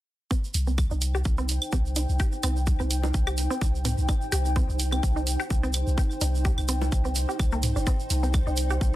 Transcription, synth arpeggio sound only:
0.31 0.36 C4 loud
0.67 0.70 C4 medium
0.91 0.95 D#4 medium
1.15 1.17 G4 loud
1.38 1.43 C4 loud
1.73 1.76 C4 medium
1.96 2.02 D#4 medium
2.20 2.22 G4 loud
2.43 2.49 C4 loud
2.80 2.83 C4 medium
3.03 3.08 D#4 medium
3.27 3.29 G4 loud
3.51 3.55 C4 loud
3.85 3.89 C4 medium
4.09 4.14 D#4 medium
4.32 4.34 G4 loud
4.56 4.61 C4 loud
4.92 4.95 C4 medium
5.16 5.21 D#4 medium
5.40 5.42 G4 loud
5.63 5.68 C4 loud
5.98 6.01 C4 medium
6.21 6.27 D#4 medium
6.45 6.47 G4 medium
6.69 6.74 C4 loud
7.05 7.08 C4 medium
7.29 7.32 G4 medium
7.52 7.55 A#3 loud
7.76 7.78 D4 medium
7.87 7.92 C4 loud
8.23 8.26 C4 medium
8.47 8.51 D#4 medium
8.70 8.72 G4 loud

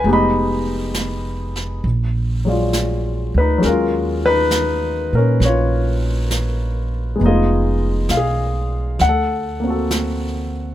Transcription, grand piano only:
0.06 1.84 G#3 medium
0.06 1.84 B3 medium
0.06 1.85 D#4 medium
0.06 1.85 G4 medium
0.13 1.84 D#5 medium
0.13 1.84 B5 medium
2.45 3.56 F#3 soft
2.45 3.60 G#3 soft
2.45 3.64 D5 soft
2.49 3.64 F4 medium
3.38 3.63 D#4 medium
3.38 3.62 B4 medium
3.58 7.18 F#3 medium
3.58 7.14 G#3 medium
3.65 5.16 C#4 soft
3.65 5.45 F4 medium
3.65 4.27 A#4 medium
4.26 5.11 D#4 medium
4.26 5.10 B4 loud
5.15 5.41 C#4 medium
5.15 5.43 A#4 medium
5.45 6.91 F4 medium
5.45 6.90 C#5 medium
7.16 8.98 G#3 medium
7.16 9.00 B3 soft
7.23 9.02 D#4 soft
7.23 9.03 F4 medium
7.23 8.15 D#5 medium
7.28 8.09 G#4 medium
8.11 8.97 F5 medium
8.17 9.00 G#4 medium
9.01 10.50 F#5 medium
9.09 9.69 A4 medium
9.60 10.75 A#3 soft
9.64 10.75 C4 soft
9.64 10.75 F#4 soft
9.70 10.75 A4 soft

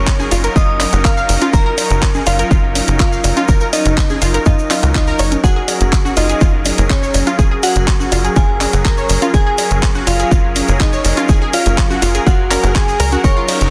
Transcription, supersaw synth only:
0.00 5.40 F#3 medium
0.00 5.40 C#4 medium
0.00 5.40 D#4 medium
0.00 5.40 A#4 medium
5.44 13.20 G#4 medium

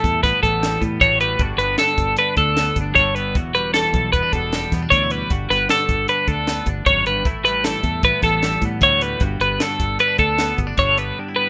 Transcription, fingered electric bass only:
0.04 0.21 E2 medium
0.24 0.32 A1 medium
0.43 0.76 A1 medium
0.81 0.98 A2 medium
1.01 1.34 A1 medium
1.39 1.56 G1 medium
1.57 1.75 G1 medium
1.98 2.15 G1 medium
2.37 2.70 D2 medium
2.76 2.93 G1 medium
2.96 3.35 G1 medium
3.35 3.85 E1 medium
3.93 4.10 B1 medium
4.13 4.22 E1 medium
4.33 4.66 E1 medium
4.72 4.88 E2 medium
4.91 5.24 D2 medium
5.31 5.47 G1 medium
5.50 5.67 G1 medium
5.89 6.05 G1 medium
6.27 6.61 D2 medium
6.66 6.83 G1 medium
6.86 7.25 G#1 medium
7.25 7.75 A1 medium
7.83 8.00 E2 medium
8.03 8.12 A1 medium
8.23 8.56 A1 medium
8.61 8.79 A2 medium
8.81 9.14 D2 medium
9.21 9.37 G1 medium
9.40 9.57 G1 medium
9.80 9.97 G1 medium
10.19 10.52 D2 medium
10.58 10.75 G1 medium
10.77 11.11 G1 medium

